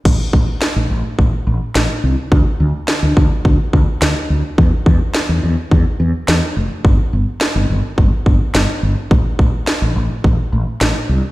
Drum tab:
CC |x-------|--------|--------|--------|
SD |--o---o-|--o---o-|--o---o-|--o---o-|
BD |oo--o---|o--ooo--|oo--o---|o---oo--|

CC |--------|
SD |--o---o-|
BD |oo--o---|